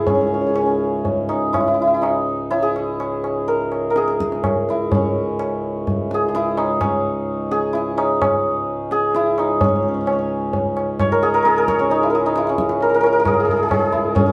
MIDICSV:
0, 0, Header, 1, 4, 480
1, 0, Start_track
1, 0, Tempo, 486224
1, 72, Time_signature, 5, 2, 24, 8
1, 3911, Tempo, 474684
1, 7271, Tempo, 463320
1, 11111, Tempo, 451467
1, 14650, End_track
2, 0, Start_track
2, 0, Title_t, "Santur"
2, 0, Program_c, 0, 15
2, 0, Note_on_c, 0, 64, 78
2, 0, Note_on_c, 0, 68, 55
2, 0, Note_on_c, 0, 70, 89
2, 73, Note_on_c, 0, 61, 68
2, 140, Note_off_c, 0, 61, 0
2, 144, Note_on_c, 0, 61, 46
2, 202, Note_off_c, 0, 61, 0
2, 206, Note_on_c, 0, 61, 50
2, 263, Note_off_c, 0, 61, 0
2, 267, Note_on_c, 0, 61, 44
2, 331, Note_off_c, 0, 61, 0
2, 335, Note_on_c, 0, 61, 51
2, 402, Note_off_c, 0, 61, 0
2, 406, Note_on_c, 0, 61, 41
2, 455, Note_off_c, 0, 61, 0
2, 459, Note_on_c, 0, 61, 46
2, 528, Note_off_c, 0, 61, 0
2, 532, Note_on_c, 0, 61, 43
2, 599, Note_off_c, 0, 61, 0
2, 603, Note_on_c, 0, 61, 45
2, 646, Note_off_c, 0, 61, 0
2, 650, Note_on_c, 0, 61, 44
2, 1270, Note_on_c, 0, 63, 74
2, 1330, Note_off_c, 0, 64, 0
2, 1426, Note_off_c, 0, 70, 0
2, 1509, Note_on_c, 0, 64, 72
2, 1568, Note_off_c, 0, 63, 0
2, 1575, Note_off_c, 0, 64, 0
2, 1579, Note_on_c, 0, 64, 55
2, 1650, Note_off_c, 0, 64, 0
2, 1654, Note_on_c, 0, 64, 68
2, 1715, Note_off_c, 0, 64, 0
2, 1719, Note_on_c, 0, 64, 58
2, 1789, Note_off_c, 0, 64, 0
2, 1793, Note_on_c, 0, 64, 67
2, 1843, Note_off_c, 0, 64, 0
2, 1847, Note_on_c, 0, 64, 58
2, 1912, Note_off_c, 0, 64, 0
2, 1916, Note_on_c, 0, 64, 67
2, 1991, Note_on_c, 0, 63, 75
2, 2050, Note_off_c, 0, 64, 0
2, 2473, Note_on_c, 0, 64, 93
2, 2532, Note_off_c, 0, 63, 0
2, 2587, Note_off_c, 0, 68, 0
2, 2591, Note_on_c, 0, 68, 83
2, 3433, Note_on_c, 0, 70, 85
2, 3849, Note_off_c, 0, 70, 0
2, 3853, Note_on_c, 0, 70, 75
2, 3916, Note_off_c, 0, 68, 0
2, 3920, Note_on_c, 0, 68, 85
2, 4478, Note_off_c, 0, 61, 0
2, 4652, Note_off_c, 0, 64, 0
2, 4656, Note_on_c, 0, 64, 77
2, 4907, Note_on_c, 0, 61, 76
2, 6112, Note_off_c, 0, 68, 0
2, 6116, Note_on_c, 0, 68, 91
2, 6255, Note_off_c, 0, 68, 0
2, 6259, Note_on_c, 0, 68, 68
2, 6326, Note_off_c, 0, 64, 0
2, 6330, Note_on_c, 0, 64, 88
2, 6555, Note_on_c, 0, 63, 82
2, 6616, Note_off_c, 0, 64, 0
2, 6727, Note_off_c, 0, 70, 0
2, 6786, Note_off_c, 0, 61, 0
2, 6790, Note_on_c, 0, 61, 72
2, 7503, Note_off_c, 0, 68, 0
2, 7508, Note_on_c, 0, 68, 94
2, 7731, Note_on_c, 0, 64, 75
2, 7793, Note_off_c, 0, 63, 0
2, 7985, Note_on_c, 0, 63, 85
2, 8047, Note_off_c, 0, 64, 0
2, 8228, Note_off_c, 0, 61, 0
2, 8232, Note_on_c, 0, 61, 60
2, 8959, Note_off_c, 0, 68, 0
2, 8963, Note_on_c, 0, 68, 99
2, 9209, Note_on_c, 0, 64, 90
2, 9271, Note_off_c, 0, 63, 0
2, 9452, Note_on_c, 0, 63, 75
2, 9514, Note_off_c, 0, 64, 0
2, 9706, Note_off_c, 0, 61, 0
2, 9710, Note_on_c, 0, 61, 78
2, 9753, Note_off_c, 0, 61, 0
2, 9757, Note_on_c, 0, 61, 53
2, 9827, Note_off_c, 0, 61, 0
2, 9831, Note_on_c, 0, 61, 53
2, 9899, Note_off_c, 0, 61, 0
2, 9903, Note_on_c, 0, 61, 45
2, 9959, Note_off_c, 0, 61, 0
2, 9963, Note_on_c, 0, 61, 55
2, 10018, Note_off_c, 0, 61, 0
2, 10023, Note_on_c, 0, 61, 47
2, 10087, Note_off_c, 0, 61, 0
2, 10091, Note_on_c, 0, 61, 50
2, 10142, Note_off_c, 0, 61, 0
2, 10147, Note_on_c, 0, 61, 48
2, 10208, Note_off_c, 0, 61, 0
2, 10213, Note_on_c, 0, 61, 52
2, 10274, Note_off_c, 0, 61, 0
2, 10278, Note_on_c, 0, 61, 48
2, 11122, Note_on_c, 0, 73, 105
2, 11247, Note_on_c, 0, 70, 97
2, 11356, Note_off_c, 0, 68, 0
2, 11361, Note_on_c, 0, 68, 103
2, 11479, Note_off_c, 0, 70, 0
2, 11483, Note_on_c, 0, 70, 102
2, 11568, Note_off_c, 0, 70, 0
2, 11572, Note_on_c, 0, 70, 78
2, 11604, Note_off_c, 0, 68, 0
2, 11608, Note_on_c, 0, 68, 88
2, 11731, Note_off_c, 0, 70, 0
2, 11735, Note_on_c, 0, 70, 97
2, 11843, Note_off_c, 0, 73, 0
2, 11847, Note_on_c, 0, 73, 95
2, 11956, Note_off_c, 0, 61, 0
2, 11960, Note_on_c, 0, 61, 80
2, 12085, Note_off_c, 0, 63, 0
2, 12089, Note_on_c, 0, 63, 91
2, 12215, Note_on_c, 0, 64, 77
2, 12279, Note_off_c, 0, 63, 0
2, 12285, Note_off_c, 0, 70, 0
2, 12290, Note_on_c, 0, 70, 69
2, 12337, Note_off_c, 0, 68, 0
2, 12341, Note_on_c, 0, 68, 85
2, 12459, Note_on_c, 0, 63, 84
2, 12523, Note_off_c, 0, 64, 0
2, 12581, Note_on_c, 0, 64, 81
2, 12645, Note_off_c, 0, 63, 0
2, 12700, Note_off_c, 0, 61, 0
2, 12704, Note_on_c, 0, 61, 72
2, 13053, Note_off_c, 0, 70, 0
2, 13057, Note_on_c, 0, 70, 92
2, 13130, Note_off_c, 0, 70, 0
2, 13134, Note_on_c, 0, 70, 70
2, 13183, Note_off_c, 0, 70, 0
2, 13187, Note_on_c, 0, 70, 87
2, 13249, Note_off_c, 0, 70, 0
2, 13253, Note_on_c, 0, 70, 79
2, 13308, Note_off_c, 0, 70, 0
2, 13313, Note_on_c, 0, 70, 91
2, 13376, Note_off_c, 0, 70, 0
2, 13380, Note_on_c, 0, 70, 79
2, 13450, Note_off_c, 0, 70, 0
2, 13455, Note_on_c, 0, 70, 85
2, 13531, Note_off_c, 0, 68, 0
2, 13535, Note_on_c, 0, 68, 85
2, 13601, Note_off_c, 0, 68, 0
2, 13605, Note_on_c, 0, 68, 67
2, 13668, Note_off_c, 0, 68, 0
2, 13672, Note_on_c, 0, 68, 78
2, 13718, Note_off_c, 0, 68, 0
2, 13722, Note_on_c, 0, 68, 66
2, 13785, Note_off_c, 0, 68, 0
2, 13789, Note_on_c, 0, 68, 71
2, 13848, Note_off_c, 0, 68, 0
2, 13852, Note_on_c, 0, 68, 60
2, 13909, Note_off_c, 0, 68, 0
2, 13913, Note_on_c, 0, 68, 71
2, 13964, Note_off_c, 0, 68, 0
2, 13968, Note_on_c, 0, 68, 61
2, 14024, Note_off_c, 0, 68, 0
2, 14029, Note_on_c, 0, 68, 71
2, 14083, Note_off_c, 0, 68, 0
2, 14087, Note_on_c, 0, 68, 66
2, 14224, Note_off_c, 0, 64, 0
2, 14229, Note_on_c, 0, 64, 85
2, 14465, Note_off_c, 0, 61, 0
2, 14470, Note_on_c, 0, 61, 82
2, 14522, Note_off_c, 0, 61, 0
2, 14527, Note_on_c, 0, 61, 58
2, 14558, Note_off_c, 0, 73, 0
2, 14583, Note_off_c, 0, 61, 0
2, 14587, Note_on_c, 0, 61, 55
2, 14646, Note_off_c, 0, 61, 0
2, 14650, Note_off_c, 0, 64, 0
2, 14650, Note_off_c, 0, 68, 0
2, 14650, Note_off_c, 0, 70, 0
2, 14650, End_track
3, 0, Start_track
3, 0, Title_t, "Harmonium"
3, 0, Program_c, 1, 20
3, 72, Note_on_c, 1, 44, 63
3, 76, Note_on_c, 1, 37, 58
3, 9670, Note_off_c, 1, 44, 0
3, 9673, Note_off_c, 1, 37, 0
3, 9686, Note_on_c, 1, 44, 68
3, 9688, Note_on_c, 1, 37, 69
3, 14650, Note_off_c, 1, 37, 0
3, 14650, Note_off_c, 1, 44, 0
3, 14650, End_track
4, 0, Start_track
4, 0, Title_t, "Tabla"
4, 66, Note_on_c, 9, 63, 101
4, 66, Note_on_c, 9, 64, 96
4, 164, Note_off_c, 9, 63, 0
4, 164, Note_off_c, 9, 64, 0
4, 550, Note_on_c, 9, 60, 71
4, 648, Note_off_c, 9, 60, 0
4, 1036, Note_on_c, 9, 63, 81
4, 1036, Note_on_c, 9, 64, 73
4, 1135, Note_off_c, 9, 63, 0
4, 1135, Note_off_c, 9, 64, 0
4, 1274, Note_on_c, 9, 60, 58
4, 1373, Note_off_c, 9, 60, 0
4, 1522, Note_on_c, 9, 60, 78
4, 1522, Note_on_c, 9, 64, 66
4, 1621, Note_off_c, 9, 60, 0
4, 1621, Note_off_c, 9, 64, 0
4, 2006, Note_on_c, 9, 60, 75
4, 2105, Note_off_c, 9, 60, 0
4, 2483, Note_on_c, 9, 63, 78
4, 2582, Note_off_c, 9, 63, 0
4, 2724, Note_on_c, 9, 60, 59
4, 2823, Note_off_c, 9, 60, 0
4, 2962, Note_on_c, 9, 60, 70
4, 3061, Note_off_c, 9, 60, 0
4, 3198, Note_on_c, 9, 60, 57
4, 3297, Note_off_c, 9, 60, 0
4, 3435, Note_on_c, 9, 63, 81
4, 3534, Note_off_c, 9, 63, 0
4, 3670, Note_on_c, 9, 60, 58
4, 3769, Note_off_c, 9, 60, 0
4, 3908, Note_on_c, 9, 62, 74
4, 4009, Note_off_c, 9, 62, 0
4, 4027, Note_on_c, 9, 62, 60
4, 4129, Note_off_c, 9, 62, 0
4, 4155, Note_on_c, 9, 37, 58
4, 4256, Note_off_c, 9, 37, 0
4, 4276, Note_on_c, 9, 62, 62
4, 4377, Note_off_c, 9, 62, 0
4, 4392, Note_on_c, 9, 60, 76
4, 4392, Note_on_c, 9, 64, 68
4, 4493, Note_off_c, 9, 60, 0
4, 4493, Note_off_c, 9, 64, 0
4, 4645, Note_on_c, 9, 62, 56
4, 4746, Note_off_c, 9, 62, 0
4, 4876, Note_on_c, 9, 63, 103
4, 4876, Note_on_c, 9, 64, 97
4, 4977, Note_off_c, 9, 63, 0
4, 4977, Note_off_c, 9, 64, 0
4, 5360, Note_on_c, 9, 60, 72
4, 5461, Note_off_c, 9, 60, 0
4, 5844, Note_on_c, 9, 63, 86
4, 5844, Note_on_c, 9, 64, 74
4, 5945, Note_off_c, 9, 63, 0
4, 5945, Note_off_c, 9, 64, 0
4, 6084, Note_on_c, 9, 62, 71
4, 6185, Note_off_c, 9, 62, 0
4, 6324, Note_on_c, 9, 62, 77
4, 6425, Note_off_c, 9, 62, 0
4, 6553, Note_on_c, 9, 60, 78
4, 6654, Note_off_c, 9, 60, 0
4, 6789, Note_on_c, 9, 60, 90
4, 6789, Note_on_c, 9, 64, 78
4, 6890, Note_off_c, 9, 60, 0
4, 6890, Note_off_c, 9, 64, 0
4, 7511, Note_on_c, 9, 62, 79
4, 7615, Note_off_c, 9, 62, 0
4, 7754, Note_on_c, 9, 62, 71
4, 7858, Note_off_c, 9, 62, 0
4, 7991, Note_on_c, 9, 60, 74
4, 8094, Note_off_c, 9, 60, 0
4, 8237, Note_on_c, 9, 60, 100
4, 8237, Note_on_c, 9, 64, 83
4, 8340, Note_off_c, 9, 60, 0
4, 8340, Note_off_c, 9, 64, 0
4, 8956, Note_on_c, 9, 62, 74
4, 9060, Note_off_c, 9, 62, 0
4, 9200, Note_on_c, 9, 62, 72
4, 9304, Note_off_c, 9, 62, 0
4, 9441, Note_on_c, 9, 60, 73
4, 9544, Note_off_c, 9, 60, 0
4, 9679, Note_on_c, 9, 63, 119
4, 9679, Note_on_c, 9, 64, 99
4, 9782, Note_off_c, 9, 63, 0
4, 9782, Note_off_c, 9, 64, 0
4, 10159, Note_on_c, 9, 60, 76
4, 10263, Note_off_c, 9, 60, 0
4, 10637, Note_on_c, 9, 63, 91
4, 10637, Note_on_c, 9, 64, 79
4, 10740, Note_off_c, 9, 63, 0
4, 10740, Note_off_c, 9, 64, 0
4, 10879, Note_on_c, 9, 60, 65
4, 10982, Note_off_c, 9, 60, 0
4, 11115, Note_on_c, 9, 60, 85
4, 11115, Note_on_c, 9, 64, 79
4, 11222, Note_off_c, 9, 60, 0
4, 11222, Note_off_c, 9, 64, 0
4, 11601, Note_on_c, 9, 62, 82
4, 11707, Note_off_c, 9, 62, 0
4, 11719, Note_on_c, 9, 62, 63
4, 11825, Note_off_c, 9, 62, 0
4, 11844, Note_on_c, 9, 37, 66
4, 11950, Note_off_c, 9, 37, 0
4, 11968, Note_on_c, 9, 62, 63
4, 12074, Note_off_c, 9, 62, 0
4, 12081, Note_on_c, 9, 63, 88
4, 12187, Note_off_c, 9, 63, 0
4, 12562, Note_on_c, 9, 62, 81
4, 12668, Note_off_c, 9, 62, 0
4, 12683, Note_on_c, 9, 62, 60
4, 12789, Note_off_c, 9, 62, 0
4, 12803, Note_on_c, 9, 37, 65
4, 12910, Note_off_c, 9, 37, 0
4, 12921, Note_on_c, 9, 62, 70
4, 13028, Note_off_c, 9, 62, 0
4, 13040, Note_on_c, 9, 63, 88
4, 13147, Note_off_c, 9, 63, 0
4, 13286, Note_on_c, 9, 60, 64
4, 13392, Note_off_c, 9, 60, 0
4, 13517, Note_on_c, 9, 60, 81
4, 13517, Note_on_c, 9, 64, 71
4, 13623, Note_off_c, 9, 60, 0
4, 13623, Note_off_c, 9, 64, 0
4, 13763, Note_on_c, 9, 64, 60
4, 13869, Note_off_c, 9, 64, 0
4, 14003, Note_on_c, 9, 60, 86
4, 14003, Note_on_c, 9, 64, 71
4, 14109, Note_off_c, 9, 60, 0
4, 14109, Note_off_c, 9, 64, 0
4, 14242, Note_on_c, 9, 64, 60
4, 14349, Note_off_c, 9, 64, 0
4, 14481, Note_on_c, 9, 63, 116
4, 14481, Note_on_c, 9, 64, 108
4, 14587, Note_off_c, 9, 63, 0
4, 14587, Note_off_c, 9, 64, 0
4, 14650, End_track
0, 0, End_of_file